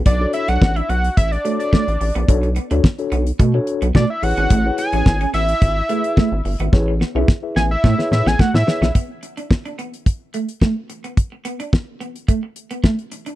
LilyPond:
<<
  \new Staff \with { instrumentName = "Analog synth lead" } { \time 4/4 \key b \dorian \tempo 4 = 108 d''8 e''16 fis''8 e''16 fis''8 e''16 d''8 d''4~ d''16~ | d''16 r2 r8. d''16 e''16 fis''8~ | fis''8 gis''4 e''2~ e''8 | r4. gis''16 e''8. e''16 gis''16 fis''16 e''8. |
r1 | r1 | }
  \new Staff \with { instrumentName = "Tine electric piano" } { \time 4/4 \key b \dorian r16 <d' fis' a' cis''>4 r4 r16 <d' fis' a' cis''>8. r8. | <d' fis' a' cis''>16 r8 <d' fis' a' cis''>16 r16 <d' fis' a' cis''>8 r8 <d' fis' a' cis''>8 r8. <e' gis' b' cis''>8 | r16 <e' gis' b' cis''>4 r4 r16 <e' gis' b' e''>8. r8. | <e' gis' b' cis''>16 r8 <e' gis' b' e''>16 r16 <e' gis' b' e''>8 r8 <e' gis' b' cis''>8 r8. <e' gis' b' cis''>16 r16 |
r1 | r1 | }
  \new Staff \with { instrumentName = "Clean electric guitar" } { \time 4/4 \key b \dorian b16 r8 d'16 r16 d'16 b16 r8. a16 r16 a16 r8 b16 | r8 b16 d'16 r8 b16 r16 a16 r8 b16 a16 r8 cis'16 | a16 r8 cis'16 r16 cis'16 b16 r8. a16 r16 a16 r8 b16 | r8 b16 cis'16 r8 b16 r16 a16 r8 b16 a16 r8 b16 |
b16 r8 d'16 r16 d'16 b16 r8. a16 r16 a16 r8 b16 | r8 b16 d'16 r8 b16 r16 a16 r8 b16 a16 r8 d'16 | }
  \new Staff \with { instrumentName = "Analog synth bass" } { \clef bass \time 4/4 \key b \dorian b,,8 r16 b,,16 a,,8 b,,8 a,,8 r8. a,,16 a,,16 ais,,16 | b,,8. d,16 r8 b,,8 b,8 r16 b,,16 b,16 r16 a,,16 gis,,16 | a,,8 r16 a,,16 gis,,8 a,,8 gis,,8 r8. gis,,16 g,,16 gis,,16 | a,,8. b,,16 r8 a,,8 a,16 r16 a,16 a,,16 r16 a,16 r16 ais,,16 |
r1 | r1 | }
  \new DrumStaff \with { instrumentName = "Drums" } \drummode { \time 4/4 <hh bd>8 hh16 hh16 <bd sn>16 hh16 hh16 hh16 <hh bd>16 hh16 hh16 hh16 <bd sn>16 hh16 hho16 hh16 | <hh bd>16 hh16 hh16 hh16 <bd sn>16 hh16 hh16 hh16 <hh bd>8 hh16 hh16 <bd sn>8 hho16 hh16 | <hh bd>8 hh16 hh16 <bd sn>16 hh16 hh16 hh16 <hh bd>8 hh16 hh16 <bd sn>8 hho16 hh16 | <bd sn>8 sn8 <bd sn>8 sn8 <bd sn>16 sn16 sn16 sn16 <bd sn>16 sn16 sn16 sn16 |
<hh bd>8 hh16 hh16 <bd sn>16 hh16 hh16 hh16 <hh bd>8 hh16 hh16 <bd sn>8 hh16 hh16 | <hh bd>8 hh16 hh16 <bd sn>8 hh16 hh16 <hh bd>8 hh16 hh16 <bd sn>16 hh16 hh16 hh16 | }
>>